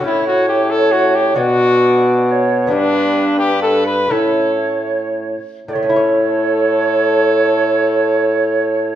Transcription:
0.00 trombone A2, lute A2 A3 C#4
0.05 cornet E4, recorder C#5
0.27 cornet F#4
0.49 cornet G4
0.71 cornet A4, recorder C#5
0.92 cornet F#4
1.15 cornet G4
1.34 lute B2 D4 F#4, trombone B2, cornet F#4, recorder D5
2.27 recorder C#5 D5
2.67 trombone G2, lute B3 D4 G4, cornet D4
2.71 lute G2, recorder B4
3.39 cornet G4, recorder B4
3.62 cornet A4
3.86 cornet B4
4.08 trombone A2, lute A2 A3 C#4 E4, cornet A4, recorder C#5
5.67 trombone A2, lute A2, cornet A4, recorder D5
5.73 lute A3, recorder C#5
5.83 lute C#4
5.89 lute E4
5.96 lute C#5

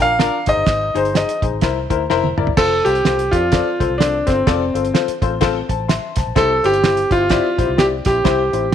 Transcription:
0.00 fingered electric bass A#1, upright piano D4 F4 A#4, grand piano F5
0.19 upright piano D4 F4 A#4, snare, closed hi-hat
0.46 fingered electric bass G#1, upright piano D#4 G#4 C5, grand piano D#5, kick, closed hi-hat
0.57 fingered electric bass G1
0.66 fingered electric bass G#1, kick, snare, closed hi-hat
0.95 fingered electric bass G1, upright piano D#4 G#4 C5, grand piano C5, closed hi-hat
1.05 closed hi-hat
1.14 upright piano D#4 G#4 C5, grand piano D#5, snare, closed hi-hat
1.29 closed hi-hat
1.42 fingered electric bass A#1, upright piano D#4 G#4 C5, kick, closed hi-hat
1.53 fingered electric bass G#1
1.61 fingered electric bass C2, upright piano E4 A#4 C5, kick, snare, closed hi-hat
1.90 fingered electric bass D2, upright piano E4 A#4 C5, kick, closed hi-hat
2.10 fingered electric bass F1, upright piano E4 A#4 C5, snare
2.24 high tom
2.37 fingered electric bass G1, upright piano E4 A#4 D5, mid tom
2.47 floor tom
2.57 fingered electric bass F1, upright piano C4 F4 A4 C5, grand piano A4, kick, snare, crash
2.85 fingered electric bass C2, upright piano C4 F4 A4 C5, grand piano G4, closed hi-hat
2.95 closed hi-hat
3.04 fingered electric bass C2, upright piano C4 F4 A4 C5, snare, closed hi-hat
3.19 closed hi-hat
3.31 fingered electric bass F2, upright piano C4 F4 A4 D5, grand piano F4, kick, closed hi-hat
3.52 upright piano C4 F4 A4 D5, kick, snare, closed hi-hat
3.80 fingered electric bass C2, upright piano C4 F4 A4 C5, kick, closed hi-hat
3.90 fingered electric bass C2
3.98 upright piano C4 F4 A4 C5, grand piano D4, snare, closed hi-hat
4.27 fingered electric bass G1, grand piano C4, upright piano C4 F4 A4 C5, kick, snare, closed hi-hat
4.47 fingered electric bass F1, upright piano C4 F4 A4 D5, kick, snare, closed hi-hat
4.74 fingered electric bass G1, upright piano C4 F4 A4 C5, closed hi-hat
4.85 closed hi-hat
4.94 upright piano C4 F4 A4 C5, snare, closed hi-hat
5.08 muted fingered electric bass stroke, closed hi-hat
5.22 fingered electric bass A1, upright piano C4 F4 A4 C5, kick, closed hi-hat
5.41 upright piano C4 F4 A4 C5, kick, snare, closed hi-hat
5.69 fingered electric bass A1, upright piano C5 A5, kick, closed hi-hat
5.88 upright piano E5 C6, snare, closed hi-hat
6.16 fingered electric bass C2, upright piano C5 A5, kick, snare, closed hi-hat
6.27 fingered electric bass A#1
6.36 fingered electric bass C2, upright piano C4 E4 G4 C5, grand piano A4, kick, snare, closed hi-hat
6.63 fingered electric bass G1, upright piano C4 E4 G4 C5, grand piano G4, closed hi-hat
6.74 closed hi-hat
6.83 upright piano C4 E4 G4 C5, snare, closed hi-hat
6.97 closed hi-hat
7.11 fingered electric bass G1, upright piano C4 E4 G4 C5, grand piano F4, kick, closed hi-hat
7.29 upright piano C4 E4 G4 D5, kick, snare, closed hi-hat
7.58 fingered electric bass A#1, upright piano C4 E4 G4 C5, kick, closed hi-hat
7.69 fingered electric bass C2
7.77 upright piano C4 E4 G4 D5, grand piano G4, snare, closed hi-hat
8.05 fingered electric bass A#1, upright piano C4 E4 G4 C5, grand piano G4, kick, snare, closed hi-hat
8.24 fingered electric bass C2, upright piano C4 E4 G4 C5, kick, snare, closed hi-hat
8.53 fingered electric bass A1, upright piano C4 E4 G4 C5, closed hi-hat

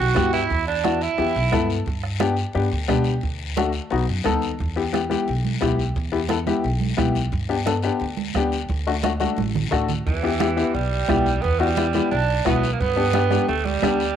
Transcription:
0.00 upright bass B1, tenor saxophone F#4
0.15 upright bass G2, upright piano B3 E4 G4, bombo low, bombo rim, high conga, short guiro
0.33 tenor saxophone E4, short guiro
0.50 upright bass E2, bombo low, high conga, long guiro
0.68 tenor saxophone D4
0.84 upright piano B3 E4 F#4, bombo rim, high conga, short guiro
1.01 tenor saxophone E4, short guiro
1.18 upright bass E2, upright piano B3 E4 G4, high conga, long guiro
1.36 upright bass B1
1.52 upright piano B3 E4 A4, bombo low, bombo rim, high conga, short guiro
1.70 short guiro
1.86 upright bass G2, bombo low, high conga, long guiro
2.03 bombo rim
2.19 upright piano B3 D4 G4, bombo rim, high conga, short guiro
2.37 short guiro
2.53 upright bass G2, upright piano B3 D4 G4, high conga, long guiro
2.72 upright bass D2
2.88 upright bass B2, upright piano B3 D4 G4, bombo low, bombo rim, high conga, short guiro
3.04 short guiro
3.21 upright bass D2, bombo low, high conga, long guiro
3.56 upright piano A3 D4 F#4, bombo rim, high conga, short guiro
3.73 short guiro
3.91 upright bass B1, upright piano B3 D#4 F#4, high conga, long guiro
4.10 upright bass F#2
4.24 upright bass D#2, upright piano B3 D#4 A4, bombo low, bombo rim, high conga, short guiro
4.42 short guiro
4.59 upright bass E2, bombo low, high conga, long guiro
4.76 upright piano B3 E4 G4
4.93 upright piano B3 E4 G4, bombo rim, high conga, short guiro
5.10 upright piano B3 E4 G4, high conga, short guiro
5.27 upright bass B1, high conga, long guiro
5.45 high conga
5.61 upright bass B1, upright piano B3 E4 G4, bombo low, bombo rim, high conga, short guiro
5.79 short guiro
5.95 upright bass E2, bombo low, high conga, long guiro
6.12 upright piano B3 E4 G4
6.29 upright piano B3 E4 A4, bombo rim, high conga, short guiro
6.47 upright piano B3 E4 G4, high conga, short guiro
6.63 upright bass B1, high conga, long guiro
6.81 high conga
6.97 upright bass B1, upright piano B3 E4 G4, bombo low, bombo rim, high conga, short guiro
7.15 short guiro
7.32 upright bass G2, bombo low, high conga, long guiro
7.49 upright piano B3 D4 G4
7.66 upright piano B3 D4 A4, bombo rim, high conga, short guiro
7.82 upright piano B3 D4 G4, short guiro
8.00 upright bass D2, high conga, long guiro
8.17 high conga
8.34 upright bass D2, upright piano B3 D4 G4, bombo low, bombo rim, high conga, short guiro
8.52 short guiro
8.69 upright bass D2, bombo low, high conga, long guiro
8.87 upright piano A3 D4 F#4
9.03 upright piano A3 D4 F#4, bombo rim, high conga, short guiro
9.20 upright piano A3 D4 F#4, high conga, short guiro
9.37 upright bass A1, high conga, long guiro
9.55 low conga
9.71 upright bass A1, upright piano A3 D4 F#4, bombo low, bombo rim, short guiro
9.88 low conga, short guiro
10.06 upright bass E2, tenor saxophone E3, bombo low, high conga, long guiro
10.23 upright piano B3 E4 G4, bombo rim
10.40 upright piano B3 E4 G4, bombo rim, high conga, short guiro
10.57 upright piano B3 E4 G4, short guiro
10.74 upright bass B1, tenor saxophone G3, high conga, long guiro
11.08 upright bass B1, upright piano B3 E4 G4, bombo low, bombo rim, high conga, short guiro
11.26 short guiro
11.42 upright bass E2, tenor saxophone B3, bombo low, high conga, long guiro
11.60 tenor saxophone G3, upright piano B3 E4 F#4
11.76 upright piano B3 E4 G4, bombo rim, high conga, short guiro
11.93 upright piano B3 E4 G4, high conga, short guiro
12.11 upright bass B1, tenor saxophone D4, high conga, long guiro
12.45 upright bass B1, upright piano B3 E4 F#4, tenor saxophone B3, bombo low, bombo rim, high conga, short guiro
12.63 short guiro
12.72 tenor saxophone A#3
12.80 upright bass G2, tenor saxophone B3, bombo low, high conga, long guiro
12.96 upright piano B3 D4 G4
13.13 upright piano B3 D4 G4, bombo rim, high conga, short guiro
13.30 upright piano B3 D4 G4, high conga, short guiro
13.48 upright bass D2, tenor saxophone A3, high conga, long guiro
13.65 tenor saxophone G3, high conga
13.82 upright bass D2, upright piano B3 D4 G4, bombo low, bombo rim, high conga, short guiro
14.00 short guiro

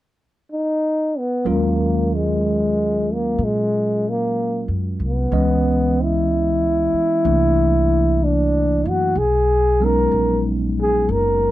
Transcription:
0.52 trombone D#4
1.18 trombone B3
1.45 upright bass D#2, tine electric piano F#3 G#3 C#4 F4 A#4, trombone A#3
2.16 trombone G#3
3.14 trombone A#3
3.38 upright bass A#2
3.44 trombone G#3
4.09 trombone A#3
4.68 upright bass F#2
5.00 upright bass C2
5.06 trombone B3
5.32 upright bass C#2, tine electric piano E3 G#3 B3 C#4 D#5
6.02 trombone E4
6.93 muted upright bass stroke
7.24 upright bass C2, tine electric piano E3 A3 A#3 D4 E4
8.24 trombone D4
8.85 upright bass F#2, trombone F#4
9.15 upright bass B1, trombone G#4
9.80 tine electric piano F#3 G#3 B3 C#4
9.84 tine electric piano D#4, trombone A#4
10.11 upright bass A#1
10.81 trombone G#4
11.09 upright bass F#1, trombone A#4

